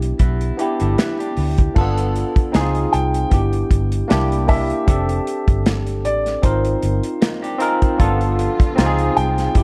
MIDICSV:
0, 0, Header, 1, 7, 480
1, 0, Start_track
1, 0, Tempo, 780031
1, 1082, Time_signature, 4, 2, 24, 8
1, 5926, End_track
2, 0, Start_track
2, 0, Title_t, "Grand piano"
2, 0, Program_c, 0, 0
2, 0, Note_on_c, 0, 67, 84
2, 575, Note_off_c, 0, 67, 0
2, 1801, Note_on_c, 0, 79, 98
2, 2737, Note_off_c, 0, 79, 0
2, 2762, Note_on_c, 0, 76, 93
2, 3457, Note_off_c, 0, 76, 0
2, 3723, Note_on_c, 0, 74, 99
2, 3945, Note_off_c, 0, 74, 0
2, 3962, Note_on_c, 0, 72, 88
2, 4657, Note_off_c, 0, 72, 0
2, 5641, Note_on_c, 0, 79, 111
2, 5926, Note_off_c, 0, 79, 0
2, 5926, End_track
3, 0, Start_track
3, 0, Title_t, "Clean electric guitar"
3, 0, Program_c, 1, 27
3, 120, Note_on_c, 1, 64, 60
3, 124, Note_on_c, 1, 59, 50
3, 349, Note_off_c, 1, 64, 0
3, 351, Note_off_c, 1, 59, 0
3, 362, Note_on_c, 1, 67, 67
3, 366, Note_on_c, 1, 62, 51
3, 485, Note_off_c, 1, 67, 0
3, 488, Note_off_c, 1, 62, 0
3, 492, Note_on_c, 1, 69, 72
3, 496, Note_on_c, 1, 64, 58
3, 597, Note_off_c, 1, 69, 0
3, 599, Note_off_c, 1, 64, 0
3, 603, Note_on_c, 1, 71, 62
3, 607, Note_on_c, 1, 64, 54
3, 726, Note_off_c, 1, 71, 0
3, 728, Note_off_c, 1, 64, 0
3, 732, Note_on_c, 1, 67, 59
3, 737, Note_on_c, 1, 62, 50
3, 1065, Note_off_c, 1, 67, 0
3, 1067, Note_off_c, 1, 62, 0
3, 4438, Note_on_c, 1, 63, 57
3, 4443, Note_on_c, 1, 58, 55
3, 4563, Note_off_c, 1, 63, 0
3, 4565, Note_off_c, 1, 58, 0
3, 4569, Note_on_c, 1, 67, 76
3, 4574, Note_on_c, 1, 62, 56
3, 4675, Note_off_c, 1, 67, 0
3, 4677, Note_off_c, 1, 62, 0
3, 4682, Note_on_c, 1, 68, 70
3, 4685, Note_on_c, 1, 63, 59
3, 4805, Note_off_c, 1, 68, 0
3, 4807, Note_off_c, 1, 63, 0
3, 4811, Note_on_c, 1, 65, 53
3, 4814, Note_on_c, 1, 60, 57
3, 5039, Note_off_c, 1, 65, 0
3, 5040, Note_off_c, 1, 60, 0
3, 5926, End_track
4, 0, Start_track
4, 0, Title_t, "Tine electric piano"
4, 0, Program_c, 2, 4
4, 0, Control_c, 2, 64, 127
4, 0, Note_on_c, 2, 59, 64
4, 0, Note_on_c, 2, 62, 61
4, 0, Note_on_c, 2, 64, 68
4, 0, Note_on_c, 2, 67, 81
4, 353, Note_off_c, 2, 59, 0
4, 353, Note_on_c, 2, 59, 69
4, 360, Note_off_c, 2, 62, 0
4, 360, Note_on_c, 2, 62, 60
4, 368, Note_off_c, 2, 64, 0
4, 368, Note_on_c, 2, 64, 72
4, 376, Note_off_c, 2, 67, 0
4, 376, Note_on_c, 2, 67, 80
4, 812, Note_off_c, 2, 59, 0
4, 815, Note_off_c, 2, 62, 0
4, 819, Note_off_c, 2, 64, 0
4, 823, Note_off_c, 2, 67, 0
4, 1072, Note_on_c, 2, 58, 62
4, 1079, Note_on_c, 2, 62, 77
4, 1087, Note_on_c, 2, 65, 73
4, 1089, Control_c, 2, 64, 0
4, 1096, Note_on_c, 2, 69, 95
4, 1111, Note_on_c, 2, 59, 90
4, 1120, Note_off_c, 2, 58, 0
4, 1190, Control_c, 2, 64, 127
4, 1550, Note_on_c, 2, 60, 80
4, 1558, Note_on_c, 2, 63, 87
4, 1561, Note_off_c, 2, 62, 0
4, 1564, Note_on_c, 2, 64, 61
4, 1565, Note_off_c, 2, 65, 0
4, 1569, Note_off_c, 2, 69, 0
4, 1569, Control_c, 2, 64, 0
4, 1573, Note_on_c, 2, 68, 108
4, 1577, Note_off_c, 2, 59, 0
4, 1604, Note_on_c, 2, 65, 84
4, 1606, Note_off_c, 2, 64, 0
4, 1676, Control_c, 2, 64, 127
4, 1948, Note_off_c, 2, 60, 0
4, 1952, Note_off_c, 2, 63, 0
4, 1959, Note_off_c, 2, 68, 0
4, 1975, Note_off_c, 2, 65, 0
4, 2031, Note_on_c, 2, 59, 68
4, 2039, Note_on_c, 2, 62, 59
4, 2046, Note_on_c, 2, 64, 55
4, 2050, Control_c, 2, 64, 0
4, 2053, Note_on_c, 2, 67, 79
4, 2157, Control_c, 2, 64, 127
4, 2490, Note_off_c, 2, 59, 0
4, 2495, Note_off_c, 2, 62, 0
4, 2498, Note_off_c, 2, 64, 0
4, 2502, Note_off_c, 2, 67, 0
4, 2509, Note_on_c, 2, 58, 82
4, 2517, Note_on_c, 2, 62, 85
4, 2524, Note_on_c, 2, 64, 80
4, 2529, Control_c, 2, 64, 0
4, 2532, Note_on_c, 2, 67, 102
4, 2646, Control_c, 2, 64, 127
4, 2712, Note_off_c, 2, 58, 0
4, 2715, Note_off_c, 2, 62, 0
4, 2719, Note_off_c, 2, 64, 0
4, 2723, Note_off_c, 2, 67, 0
4, 2751, Note_on_c, 2, 58, 68
4, 2758, Note_on_c, 2, 62, 65
4, 2767, Note_on_c, 2, 64, 64
4, 2774, Note_on_c, 2, 67, 75
4, 2914, Note_off_c, 2, 58, 0
4, 2918, Note_off_c, 2, 62, 0
4, 2922, Note_off_c, 2, 64, 0
4, 2926, Note_off_c, 2, 67, 0
4, 2993, Note_on_c, 2, 60, 72
4, 2999, Note_on_c, 2, 62, 63
4, 3007, Note_on_c, 2, 67, 70
4, 3008, Control_c, 2, 64, 0
4, 3015, Note_on_c, 2, 69, 78
4, 3132, Control_c, 2, 64, 127
4, 3609, Note_off_c, 2, 60, 0
4, 3612, Note_off_c, 2, 62, 0
4, 3616, Note_off_c, 2, 67, 0
4, 3620, Note_off_c, 2, 69, 0
4, 3951, Note_on_c, 2, 60, 72
4, 3959, Note_on_c, 2, 63, 66
4, 3967, Note_on_c, 2, 65, 62
4, 3970, Control_c, 2, 64, 0
4, 3975, Note_on_c, 2, 70, 78
4, 4073, Control_c, 2, 64, 127
4, 4410, Note_off_c, 2, 60, 0
4, 4414, Note_off_c, 2, 63, 0
4, 4418, Note_off_c, 2, 65, 0
4, 4422, Note_off_c, 2, 70, 0
4, 4666, Note_on_c, 2, 60, 90
4, 4674, Note_on_c, 2, 63, 81
4, 4680, Note_on_c, 2, 65, 80
4, 4689, Note_on_c, 2, 70, 100
4, 4831, Note_off_c, 2, 60, 0
4, 4836, Note_off_c, 2, 63, 0
4, 4839, Note_off_c, 2, 65, 0
4, 4843, Note_off_c, 2, 70, 0
4, 4906, Note_on_c, 2, 58, 75
4, 4913, Note_on_c, 2, 62, 80
4, 4922, Note_on_c, 2, 65, 82
4, 4929, Note_on_c, 2, 69, 100
4, 4930, Control_c, 2, 64, 0
4, 4947, Note_on_c, 2, 59, 89
4, 4957, Note_off_c, 2, 58, 0
4, 5036, Control_c, 2, 64, 127
4, 5388, Note_on_c, 2, 60, 97
4, 5397, Note_off_c, 2, 62, 0
4, 5397, Note_on_c, 2, 63, 93
4, 5398, Note_off_c, 2, 65, 0
4, 5405, Note_off_c, 2, 69, 0
4, 5406, Note_on_c, 2, 65, 92
4, 5408, Control_c, 2, 64, 0
4, 5412, Note_on_c, 2, 67, 76
4, 5414, Note_off_c, 2, 59, 0
4, 5450, Note_off_c, 2, 67, 0
4, 5452, Note_on_c, 2, 68, 111
4, 5514, Control_c, 2, 64, 127
4, 5786, Note_off_c, 2, 60, 0
4, 5791, Note_off_c, 2, 63, 0
4, 5795, Note_off_c, 2, 65, 0
4, 5818, Note_off_c, 2, 68, 0
4, 5870, Note_on_c, 2, 59, 66
4, 5878, Note_on_c, 2, 62, 64
4, 5885, Note_on_c, 2, 64, 70
4, 5889, Control_c, 2, 64, 0
4, 5892, Note_on_c, 2, 67, 83
4, 5926, Note_off_c, 2, 59, 0
4, 5926, Note_off_c, 2, 62, 0
4, 5926, Note_off_c, 2, 64, 0
4, 5926, Note_off_c, 2, 67, 0
4, 5926, End_track
5, 0, Start_track
5, 0, Title_t, "String section"
5, 0, Program_c, 3, 48
5, 4920, Note_on_c, 3, 59, 62
5, 4921, Note_on_c, 3, 50, 63
5, 4921, Note_on_c, 3, 53, 66
5, 4921, Note_on_c, 3, 65, 74
5, 4922, Note_on_c, 3, 55, 65
5, 5396, Note_off_c, 3, 50, 0
5, 5396, Note_off_c, 3, 59, 0
5, 5397, Note_off_c, 3, 55, 0
5, 5400, Note_on_c, 3, 48, 76
5, 5400, Note_on_c, 3, 56, 61
5, 5400, Note_on_c, 3, 60, 63
5, 5870, Note_off_c, 3, 48, 0
5, 5871, Note_off_c, 3, 53, 0
5, 5871, Note_off_c, 3, 65, 0
5, 5876, Note_off_c, 3, 56, 0
5, 5876, Note_off_c, 3, 60, 0
5, 5876, Note_on_c, 3, 59, 60
5, 5878, Note_on_c, 3, 48, 75
5, 5878, Note_on_c, 3, 55, 69
5, 5879, Note_on_c, 3, 52, 67
5, 5879, Note_on_c, 3, 64, 79
5, 5926, Note_off_c, 3, 48, 0
5, 5926, Note_off_c, 3, 52, 0
5, 5926, Note_off_c, 3, 55, 0
5, 5926, Note_off_c, 3, 59, 0
5, 5926, Note_off_c, 3, 64, 0
5, 5926, End_track
6, 0, Start_track
6, 0, Title_t, "Fingered electric bass"
6, 0, Program_c, 4, 33
6, 0, Note_on_c, 4, 35, 91
6, 73, Note_off_c, 4, 35, 0
6, 126, Note_on_c, 4, 35, 89
6, 311, Note_off_c, 4, 35, 0
6, 500, Note_on_c, 4, 31, 84
6, 583, Note_off_c, 4, 31, 0
6, 846, Note_on_c, 4, 38, 74
6, 1031, Note_off_c, 4, 38, 0
6, 1086, Note_on_c, 4, 31, 93
6, 1372, Note_off_c, 4, 31, 0
6, 1568, Note_on_c, 4, 37, 99
6, 1752, Note_off_c, 4, 37, 0
6, 1808, Note_on_c, 4, 36, 83
6, 1992, Note_off_c, 4, 36, 0
6, 2044, Note_on_c, 4, 31, 81
6, 2229, Note_off_c, 4, 31, 0
6, 2284, Note_on_c, 4, 31, 91
6, 2469, Note_off_c, 4, 31, 0
6, 2531, Note_on_c, 4, 36, 102
6, 2900, Note_off_c, 4, 36, 0
6, 3005, Note_on_c, 4, 29, 114
6, 3190, Note_off_c, 4, 29, 0
6, 3373, Note_on_c, 4, 31, 78
6, 3726, Note_off_c, 4, 31, 0
6, 3726, Note_on_c, 4, 33, 89
6, 3910, Note_off_c, 4, 33, 0
6, 3963, Note_on_c, 4, 32, 87
6, 4149, Note_off_c, 4, 32, 0
6, 4204, Note_on_c, 4, 31, 99
6, 4303, Note_off_c, 4, 31, 0
6, 4925, Note_on_c, 4, 31, 107
6, 5210, Note_off_c, 4, 31, 0
6, 5405, Note_on_c, 4, 37, 96
6, 5590, Note_off_c, 4, 37, 0
6, 5644, Note_on_c, 4, 36, 85
6, 5829, Note_off_c, 4, 36, 0
6, 5881, Note_on_c, 4, 31, 107
6, 5926, Note_off_c, 4, 31, 0
6, 5926, End_track
7, 0, Start_track
7, 0, Title_t, "Drums"
7, 14, Note_on_c, 9, 42, 58
7, 75, Note_off_c, 9, 42, 0
7, 119, Note_on_c, 9, 42, 72
7, 122, Note_on_c, 9, 36, 88
7, 181, Note_off_c, 9, 42, 0
7, 183, Note_off_c, 9, 36, 0
7, 251, Note_on_c, 9, 42, 50
7, 313, Note_off_c, 9, 42, 0
7, 363, Note_on_c, 9, 42, 67
7, 425, Note_off_c, 9, 42, 0
7, 490, Note_on_c, 9, 42, 55
7, 552, Note_off_c, 9, 42, 0
7, 605, Note_on_c, 9, 42, 80
7, 609, Note_on_c, 9, 38, 104
7, 667, Note_off_c, 9, 42, 0
7, 670, Note_off_c, 9, 38, 0
7, 740, Note_on_c, 9, 42, 54
7, 802, Note_off_c, 9, 42, 0
7, 841, Note_on_c, 9, 46, 81
7, 903, Note_off_c, 9, 46, 0
7, 971, Note_on_c, 9, 42, 50
7, 975, Note_on_c, 9, 36, 87
7, 1033, Note_off_c, 9, 42, 0
7, 1037, Note_off_c, 9, 36, 0
7, 1084, Note_on_c, 9, 36, 107
7, 1085, Note_on_c, 9, 49, 78
7, 1146, Note_off_c, 9, 36, 0
7, 1146, Note_off_c, 9, 49, 0
7, 1216, Note_on_c, 9, 42, 62
7, 1278, Note_off_c, 9, 42, 0
7, 1326, Note_on_c, 9, 42, 62
7, 1388, Note_off_c, 9, 42, 0
7, 1453, Note_on_c, 9, 36, 95
7, 1455, Note_on_c, 9, 42, 45
7, 1514, Note_off_c, 9, 36, 0
7, 1517, Note_off_c, 9, 42, 0
7, 1564, Note_on_c, 9, 42, 87
7, 1567, Note_on_c, 9, 38, 112
7, 1625, Note_off_c, 9, 42, 0
7, 1629, Note_off_c, 9, 38, 0
7, 1691, Note_on_c, 9, 42, 43
7, 1753, Note_off_c, 9, 42, 0
7, 1805, Note_on_c, 9, 42, 74
7, 1866, Note_off_c, 9, 42, 0
7, 1935, Note_on_c, 9, 42, 55
7, 1996, Note_off_c, 9, 42, 0
7, 2039, Note_on_c, 9, 42, 80
7, 2041, Note_on_c, 9, 36, 83
7, 2101, Note_off_c, 9, 42, 0
7, 2102, Note_off_c, 9, 36, 0
7, 2171, Note_on_c, 9, 42, 53
7, 2232, Note_off_c, 9, 42, 0
7, 2281, Note_on_c, 9, 36, 79
7, 2284, Note_on_c, 9, 42, 69
7, 2342, Note_off_c, 9, 36, 0
7, 2345, Note_off_c, 9, 42, 0
7, 2412, Note_on_c, 9, 42, 55
7, 2473, Note_off_c, 9, 42, 0
7, 2525, Note_on_c, 9, 42, 77
7, 2528, Note_on_c, 9, 38, 115
7, 2586, Note_off_c, 9, 42, 0
7, 2590, Note_off_c, 9, 38, 0
7, 2658, Note_on_c, 9, 42, 51
7, 2720, Note_off_c, 9, 42, 0
7, 2759, Note_on_c, 9, 46, 59
7, 2763, Note_on_c, 9, 36, 85
7, 2821, Note_off_c, 9, 46, 0
7, 2825, Note_off_c, 9, 36, 0
7, 2892, Note_on_c, 9, 42, 47
7, 2953, Note_off_c, 9, 42, 0
7, 3001, Note_on_c, 9, 42, 94
7, 3002, Note_on_c, 9, 36, 103
7, 3063, Note_off_c, 9, 36, 0
7, 3063, Note_off_c, 9, 42, 0
7, 3133, Note_on_c, 9, 42, 61
7, 3194, Note_off_c, 9, 42, 0
7, 3244, Note_on_c, 9, 42, 63
7, 3306, Note_off_c, 9, 42, 0
7, 3370, Note_on_c, 9, 36, 89
7, 3374, Note_on_c, 9, 42, 53
7, 3432, Note_off_c, 9, 36, 0
7, 3435, Note_off_c, 9, 42, 0
7, 3482, Note_on_c, 9, 42, 86
7, 3486, Note_on_c, 9, 38, 109
7, 3544, Note_off_c, 9, 42, 0
7, 3547, Note_off_c, 9, 38, 0
7, 3610, Note_on_c, 9, 42, 48
7, 3672, Note_off_c, 9, 42, 0
7, 3723, Note_on_c, 9, 42, 77
7, 3784, Note_off_c, 9, 42, 0
7, 3853, Note_on_c, 9, 42, 51
7, 3855, Note_on_c, 9, 38, 27
7, 3914, Note_off_c, 9, 42, 0
7, 3917, Note_off_c, 9, 38, 0
7, 3958, Note_on_c, 9, 42, 83
7, 3959, Note_on_c, 9, 36, 81
7, 4020, Note_off_c, 9, 42, 0
7, 4021, Note_off_c, 9, 36, 0
7, 4090, Note_on_c, 9, 42, 56
7, 4152, Note_off_c, 9, 42, 0
7, 4200, Note_on_c, 9, 42, 68
7, 4262, Note_off_c, 9, 42, 0
7, 4329, Note_on_c, 9, 42, 59
7, 4391, Note_off_c, 9, 42, 0
7, 4441, Note_on_c, 9, 42, 85
7, 4445, Note_on_c, 9, 38, 122
7, 4503, Note_off_c, 9, 42, 0
7, 4506, Note_off_c, 9, 38, 0
7, 4577, Note_on_c, 9, 42, 53
7, 4639, Note_off_c, 9, 42, 0
7, 4678, Note_on_c, 9, 42, 84
7, 4739, Note_off_c, 9, 42, 0
7, 4812, Note_on_c, 9, 42, 51
7, 4813, Note_on_c, 9, 36, 80
7, 4873, Note_off_c, 9, 42, 0
7, 4875, Note_off_c, 9, 36, 0
7, 4921, Note_on_c, 9, 36, 100
7, 4921, Note_on_c, 9, 42, 81
7, 4982, Note_off_c, 9, 42, 0
7, 4983, Note_off_c, 9, 36, 0
7, 5051, Note_on_c, 9, 42, 54
7, 5113, Note_off_c, 9, 42, 0
7, 5163, Note_on_c, 9, 42, 70
7, 5225, Note_off_c, 9, 42, 0
7, 5291, Note_on_c, 9, 36, 102
7, 5294, Note_on_c, 9, 42, 53
7, 5352, Note_off_c, 9, 36, 0
7, 5356, Note_off_c, 9, 42, 0
7, 5403, Note_on_c, 9, 42, 98
7, 5407, Note_on_c, 9, 38, 107
7, 5465, Note_off_c, 9, 42, 0
7, 5468, Note_off_c, 9, 38, 0
7, 5530, Note_on_c, 9, 42, 45
7, 5591, Note_off_c, 9, 42, 0
7, 5642, Note_on_c, 9, 42, 77
7, 5703, Note_off_c, 9, 42, 0
7, 5772, Note_on_c, 9, 42, 54
7, 5775, Note_on_c, 9, 38, 33
7, 5834, Note_off_c, 9, 42, 0
7, 5836, Note_off_c, 9, 38, 0
7, 5876, Note_on_c, 9, 42, 75
7, 5878, Note_on_c, 9, 36, 89
7, 5926, Note_off_c, 9, 36, 0
7, 5926, Note_off_c, 9, 42, 0
7, 5926, End_track
0, 0, End_of_file